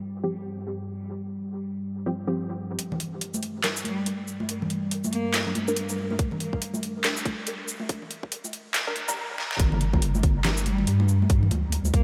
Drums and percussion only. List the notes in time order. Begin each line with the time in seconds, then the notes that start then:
2.79 closed hi-hat
2.92 muted conga, low conga
3.00 closed hi-hat
3.21 closed hi-hat
3.34 high conga, shaker
3.43 closed hi-hat
3.64 snare, clap, closed hi-hat
3.76 shaker
3.84 closed hi-hat, high conga
4.06 closed hi-hat
4.28 shaker
4.40 high conga
4.49 closed hi-hat
4.62 low conga
4.70 closed hi-hat
4.91 closed hi-hat
5.04 high conga, shaker
5.13 closed hi-hat
5.34 snare, clap, closed hi-hat
5.55 closed hi-hat, high conga
5.68 muted conga, shaker
5.76 closed hi-hat
5.89 shaker
5.99 muted conga
6.10 high conga
6.19 kick, closed hi-hat
6.31 muted conga, low conga
6.40 closed hi-hat
6.53 kick
6.62 closed hi-hat
6.74 high conga, shaker
6.83 closed hi-hat
7.04 snare, clap, closed hi-hat
7.17 shaker
7.25 kick, closed hi-hat, high conga
7.47 closed hi-hat
7.68 shaker
7.80 high conga
7.89 kick, closed hi-hat
8.02 low conga
8.11 closed hi-hat
8.23 kick
8.32 closed hi-hat
8.44 high conga, shaker
8.53 closed hi-hat
8.74 snare, clap, closed hi-hat
8.96 closed hi-hat, high conga
9.08 muted conga, shaker
9.38 snare
9.51 snare
9.60 kick, closed hi-hat
9.72 muted conga, low conga
9.81 closed hi-hat
9.93 kick, muted conga
10.02 closed hi-hat
10.15 high conga, shaker
10.23 kick, closed hi-hat, muted conga
10.44 snare, clap, closed hi-hat, muted conga
10.57 shaker
10.66 closed hi-hat, high conga
10.78 muted conga
10.87 closed hi-hat
11.00 muted conga
11.08 shaker
11.22 high conga
11.29 kick, closed hi-hat, muted conga
11.43 low conga
11.51 closed hi-hat, muted conga
11.72 closed hi-hat
11.85 muted conga, high conga, shaker
11.94 kick, closed hi-hat